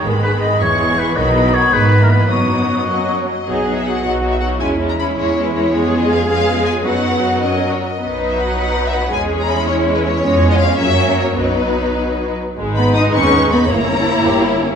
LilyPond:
<<
  \new Staff \with { instrumentName = "Violin section" } { \time 6/8 \key b \major \tempo 4. = 107 b''4. cis'''4. | b''2. | dis'''4. dis''8. cis''16 dis''8~ | dis''8. e''16 fis''8 fis''8. e''16 fis''8 |
gis''8. ais''16 b''8 cis''8. b'16 cis''8~ | cis''8. dis''16 eis''8 eis''4 gis''8 | fis''4. dis''8. cis''16 dis''8~ | dis''8. e''16 fis''8 fis''8. e''16 fis''8 |
gis''8. ais''16 b''8 cis''8. b'16 cis''8~ | cis''8. dis''16 eis''8 e''4 cis''8 | b'2~ b'8 r8 | \key gis \minor r8 b''8 dis'''8 cis'''4 b''8 |
bes''2~ bes''8 r8 | }
  \new Staff \with { instrumentName = "Oboe" } { \time 6/8 \key b \major r8 b'8 dis''8 cis''4 b'8 | dis''4 cis''8 b'8. ais'16 b'8 | fis'2~ fis'8 r8 | r2. |
r2. | r2. | r2. | r2. |
r2. | r2. | r2. | \key gis \minor r2. |
r2. | }
  \new Staff \with { instrumentName = "Violin section" } { \time 6/8 \key b \major << { gis'4. gis'4. | dis'4. dis'4. | dis'4. fis'4 r8 | fis'8 fis'8 fis'8 fis'8 fis'8 fis'8 |
e'8 e'8 e'8 e'8 e'8 e'8 | gis'4. gis'4. | b'4. ais'4 r8 | b'2. |
cis''2. | cis''4. cis''4. | b'2~ b'8 r8 | \key gis \minor b'2. |
des''2. | } \\ { b4. b4. | b4. b4. | b4. cis'4 r8 | dis'8 dis'8 dis'8 dis'8 dis'8 dis'8 |
cis'8 cis'8 cis'8 cis'8 cis'8 cis'8 | cis'4. cis'4. | dis'4. fis'4 r8 | b8 dis'8 fis'8 dis'8 b8 dis'8 |
gis8 cis'8 e'8 cis'8 gis8 cis'8 | cis'4. cis'4. | dis'2~ dis'8 r8 | gis8 b8 dis'8 b8 gis8 b8 |
bes8 des'8 e'8 g'8 e'8 des'8 | } >> }
  \new Staff \with { instrumentName = "Cello section" } { \time 6/8 \key b \major gis,4. e,4. | b,4. gis,4. | fis,2~ fis,8 r8 | gis'4. fis'4. |
e'2. | gis'2. | fis'2~ fis'16 r8. | b'2. |
gis'4. e'4. | cis'2. | dis'2~ dis'16 r8. | \key gis \minor r8 b8 dis'8 cis'4 b8 |
bes2~ bes8 r8 | }
  \new Staff \with { instrumentName = "Viola section" } { \clef bass \time 6/8 \key b \major <dis gis>4. <e gis>4. | <dis fis>4. <dis gis>8. <e ais>8. | <fis b>4. <fis ais>4 r8 | <fis b>8 <fis b>8 <fis b>8 <fis b>8 <fis b>8 <fis b>8 |
<gis cis'>8 <gis cis'>8 <gis cis'>8 <gis cis'>8 <gis cis'>8 <gis cis'>8 | <gis b>4. <gis b>4. | <fis b>4. <fis cis'>4 r8 | <fis dis'>2. |
<gis cis'>2. | <gis b>4. <fis ais>4. | <fis b>2~ <fis b>8 r8 | \key gis \minor <gis dis'>2. |
<bes e'>2. | }
  \new Staff \with { instrumentName = "Double bass section" } { \clef bass \time 6/8 \key b \major gis,,4 r8 e,,4 r8 | b,,4 r8 gis,,4 r8 | fis,,4 r2 | b,,4. b,,4. |
e,4. e,4. | eis,2. | fis,2~ fis,8 r8 | b,,2. |
e,2. | eis,4. fis,4. | b,,2~ b,,8 r8 | \key gis \minor gis,,4. dis,4. |
g,,4. g,,4. | }
>>